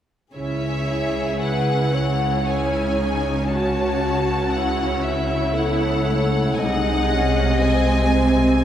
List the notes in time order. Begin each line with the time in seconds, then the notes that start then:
0.35 C#2 C#3 C#4 E4 G#4 C#5 E5
0.90 E4
1.42 B4 F#5
1.95 C#5
2.46 C#4 E4 G#4 G#5
2.99 D#4
3.47 C#4 F#4 C#5 A5
4.50 C#4 E4 C#5 F#5
5.03 E5
5.56 B3 A4 C#5 F#5
6.10 A3
6.54 G#5
6.60 C2 C3 G#3 D#4 G#4 D#5 F#5
7.11 C#4
7.61 G#3 C4 C5 G#5